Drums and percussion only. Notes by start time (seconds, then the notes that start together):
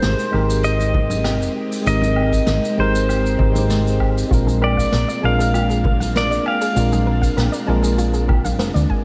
0.02 snare, open hi-hat, muted conga, shaker
0.19 shaker
0.33 high conga, low woodblock
0.49 open hi-hat, shaker
0.63 open hi-hat, shaker
0.80 muted conga, shaker
0.94 kick, muted conga, low conga
1.10 open hi-hat, high conga, shaker
1.24 snare, open hi-hat, low woodblock, shaker
1.42 shaker
1.72 open hi-hat, shaker
1.86 open hi-hat, shaker
2.02 high conga, shaker
2.16 low woodblock
2.32 kick, open hi-hat, shaker
2.47 snare, muted conga, shaker
2.65 shaker
2.78 high conga
2.95 open hi-hat, shaker
3.09 open hi-hat, low woodblock, shaker
3.26 shaker
3.39 kick, low conga
3.55 open hi-hat, high conga, shaker
3.70 snare, open hi-hat, shaker
3.87 shaker
4.00 kick, low woodblock
4.17 open hi-hat, shaker
4.31 kick, open hi-hat, shaker
4.47 high conga, shaker
4.62 low woodblock
4.78 kick, open hi-hat, shaker
4.92 snare, open hi-hat, muted conga, shaker
5.09 shaker
5.23 high conga
5.40 open hi-hat, shaker
5.54 open hi-hat, low woodblock, shaker
5.70 muted conga, shaker
5.84 kick, muted conga, low conga
6.00 open hi-hat, high conga, shaker
6.16 snare, open hi-hat, shaker
6.32 shaker
6.46 low woodblock
6.61 open hi-hat, shaker
6.76 open hi-hat, shaker
6.93 high conga, shaker
7.23 kick, open hi-hat, shaker
7.37 snare, open hi-hat, muted conga, low woodblock, shaker
7.53 shaker
7.69 high conga
7.83 open hi-hat, shaker
7.98 open hi-hat, shaker
8.14 shaker
8.29 kick, low conga, low woodblock
8.44 open hi-hat, high conga, shaker
8.59 snare, open hi-hat, shaker
8.76 shaker
8.90 kick